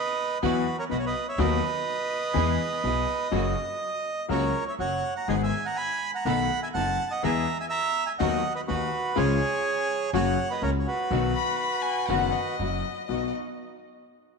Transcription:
Already playing: B4 D#5
0.42 E2 E3 F#3 B3 E4 F#4 B4
0.79 A#4 C#5
0.90 B1 B2 B3 E4 F#4 B4 D#5
0.99 C#5
1.06 B4 D#5
1.28 C#5 E5
1.38 D#2 D#3 F#3 B3 D#4 F#4 B4 D#5
2.34 E2 E3 G#3 B3 E4 G#4
2.84 B1 B2 B3 E4 G#4
3.31 F#1 F#2 C#3 F#3 A#3 C#4 F#4
4.29 C#2 C#3 F#3 A#3 C#4 F#4 A#4 C#5
4.68 C#5 E5
4.79 F#1 F#2 F#3 A#3 C#4 F#4 C#5 F#5
5.16 F#5 A#5
5.28 G#1 G#2 D#3 G#3 B3 D#4 G#4 D#5 G#5
5.34 F#5
5.43 E5 G#5
5.65 F#5 A#5
5.76 G#5 B5
6.15 F#5 A#5
6.25 B1 B2 D#3 A3 B3 D#4 F#4 A4 F#5 B5
6.63 E5 G#5
6.74 F#1 F#2 B3 D#4 A4 F#5 A5
7.11 D#5 F#5
7.23 E2 E3 G#3 B3 E4 G#4 E5 A#5
7.60 E5 G#5
7.69 E5 A#5
8.07 E5 G#5
8.19 D#2 D#3 F#3 B3 D#4 F#4 D#5 F#5
8.55 B4 D#5
8.67 D#2 D#3 B3 D#4 F#4 B4
9.16 C#2 C#3 F3 G#3 C#4 F4 G#4 C#5
10.13 F#1 F#2 C#3 F#3 A#3 C#4 F#4 C#5 F#5
10.51 B4 D#5
10.62 C#2 C#3 A#3 C#4 F#4 A#4 C#5
10.80 C#5
10.87 F#4 B4
11.11 B1 B2 D#3 F#3 B3 D#4 F#4
11.35 B5
11.59 B5
11.82 G#5
12.08 F#1 F#2 D#3 F#3 B3 D#4 F#4 F#5
12.33 D#5
12.59 F#1 F#2 F#3 A#3 E4 F#4
13.08 B1 B3 D#4 F#4 D#5

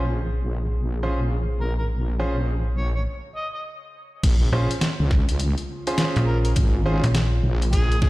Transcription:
Already playing: A#1 C#3 G#3 C4 G#4
1.03 C#4 F4 G#4 C5
1.61 A#4
1.79 A#4
2.19 C#4 F4 G#4 C5
2.78 C#5
2.95 C#5
3.36 D#5
3.54 D#5
4.23 A#1 C#3 G#3 A#3 F4, kick, closed hi-hat, crash
4.52 A#1 C#4 F4 G#4 C5
4.71 closed hi-hat
4.81 snare, closed hi-hat
5.00 C#2
5.11 kick, snare
5.29 closed hi-hat
5.40 closed hi-hat
5.58 closed hi-hat
5.87 C#4 F4 G#4 C5, closed hi-hat
5.98 snare, closed hi-hat
6.16 A#1, closed hi-hat
6.27 A#4
6.45 A#4, closed hi-hat
6.56 G#1, kick, closed hi-hat
6.86 C#4 F4 G#4 C5
7.04 A#1, closed hi-hat
7.15 snare, closed hi-hat
7.43 A#1
7.62 closed hi-hat
7.72 G#4, kick, closed hi-hat
7.92 closed hi-hat
8.01 G#1 G#4, kick, snare

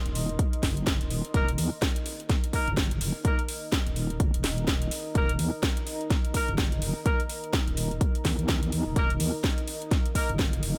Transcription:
Already playing: D#4 A#4 D#5 C6
0.06 D#1, closed hi-hat
0.15 open hi-hat
0.29 closed hi-hat
0.39 kick, closed hi-hat
0.53 closed hi-hat
0.63 F#1, kick, snare, open hi-hat
0.77 closed hi-hat
0.87 kick, snare, closed hi-hat
1.01 D#1, closed hi-hat
1.11 open hi-hat
1.25 closed hi-hat
1.34 D#1 A#3 D#4 A#4, kick, closed hi-hat
1.48 closed hi-hat
1.58 D#2, open hi-hat
1.74 A#5
1.82 kick, snare, closed hi-hat
1.96 closed hi-hat
2.06 open hi-hat
2.20 closed hi-hat
2.29 kick, snare, closed hi-hat
2.44 closed hi-hat
2.53 A#3 D#4 A#4, kick, open hi-hat
2.67 F#1, closed hi-hat
2.77 kick, snare, closed hi-hat
2.91 closed hi-hat
3.01 F1, open hi-hat
3.25 A#3 D#4 A#4, kick, closed hi-hat
3.39 closed hi-hat
3.49 open hi-hat
3.72 kick, snare, closed hi-hat
3.87 D#1, closed hi-hat
3.96 open hi-hat
4.10 closed hi-hat
4.20 F#1, kick, closed hi-hat
4.34 D#1, closed hi-hat
4.44 D#1, snare, open hi-hat
4.58 closed hi-hat
4.68 kick, snare, closed hi-hat
4.82 closed hi-hat
4.91 open hi-hat
5.15 D#1 A#3 D#4 A#4, kick, closed hi-hat
5.29 closed hi-hat
5.39 D#2, open hi-hat
5.63 kick, snare, closed hi-hat
5.77 closed hi-hat
5.87 open hi-hat
6.01 closed hi-hat
6.10 kick, snare, closed hi-hat
6.25 closed hi-hat
6.34 A#3 D#4 A#4, kick, open hi-hat
6.48 F#1, closed hi-hat
6.58 kick, snare, closed hi-hat
6.72 closed hi-hat
6.82 F1, open hi-hat
7.06 A#3 D#4 A#4, kick, closed hi-hat
7.20 closed hi-hat
7.29 open hi-hat
7.44 closed hi-hat
7.53 kick, snare, closed hi-hat
7.67 D#1, closed hi-hat
7.77 open hi-hat
7.91 closed hi-hat
8.01 kick, closed hi-hat
8.15 closed hi-hat
8.25 D#2, kick, snare, open hi-hat
8.39 closed hi-hat
8.49 kick, snare, closed hi-hat
8.63 closed hi-hat
8.72 D#2, open hi-hat
8.86 D#1
8.96 D#1 A#3 D#4 A#4, kick, closed hi-hat
9.10 closed hi-hat
9.20 D#2, open hi-hat
9.36 F5
9.44 kick, snare, closed hi-hat
9.58 closed hi-hat
9.68 open hi-hat
9.82 closed hi-hat
9.91 kick, snare, closed hi-hat
10.06 closed hi-hat
10.15 A#3 D#4 A#4, kick, open hi-hat
10.29 F#1, closed hi-hat
10.39 kick, snare, closed hi-hat
10.53 closed hi-hat
10.63 F1, open hi-hat

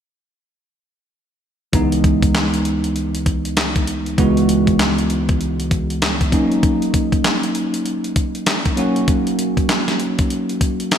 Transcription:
1.73 C#2 E3 G#3 B3 D#4, kick, closed hi-hat
1.92 closed hi-hat
2.04 kick, closed hi-hat
2.23 kick, closed hi-hat
2.35 snare, clap, closed hi-hat
2.54 closed hi-hat
2.65 closed hi-hat
2.84 closed hi-hat
2.96 closed hi-hat
3.15 closed hi-hat
3.26 kick, closed hi-hat
3.45 closed hi-hat
3.57 snare, clap, closed hi-hat
3.76 kick, closed hi-hat
3.87 closed hi-hat
4.06 closed hi-hat
4.17 C#2 E3 G#3 B3 F#4, kick, closed hi-hat
4.37 closed hi-hat
4.49 closed hi-hat
4.67 kick, closed hi-hat
4.79 snare, clap, closed hi-hat
4.98 closed hi-hat
5.10 closed hi-hat
5.29 kick, closed hi-hat
5.41 closed hi-hat
5.60 closed hi-hat
5.71 kick, closed hi-hat
5.90 closed hi-hat
6.02 snare, clap, closed hi-hat
6.21 kick, closed hi-hat
6.31 F#3 A#3 C#4 D#4, kick, closed hi-hat
6.52 closed hi-hat
6.63 kick, closed hi-hat
6.82 closed hi-hat
6.94 kick, closed hi-hat
7.12 kick, closed hi-hat
7.24 snare, clap, closed hi-hat
7.43 closed hi-hat
7.55 closed hi-hat
7.74 closed hi-hat
7.86 closed hi-hat
8.04 closed hi-hat
8.16 kick, closed hi-hat
8.35 closed hi-hat
8.46 snare, clap, closed hi-hat
8.65 kick, closed hi-hat
8.77 F#3 A#3 C#4 F#4, closed hi-hat
8.96 closed hi-hat
9.08 kick, closed hi-hat
9.27 closed hi-hat
9.39 closed hi-hat
9.57 kick, closed hi-hat
9.69 snare, clap, closed hi-hat
9.88 snare, closed hi-hat
10.00 closed hi-hat
10.19 kick, closed hi-hat
10.30 closed hi-hat
10.49 closed hi-hat
10.61 kick, closed hi-hat
10.80 closed hi-hat
10.91 snare, clap, closed hi-hat

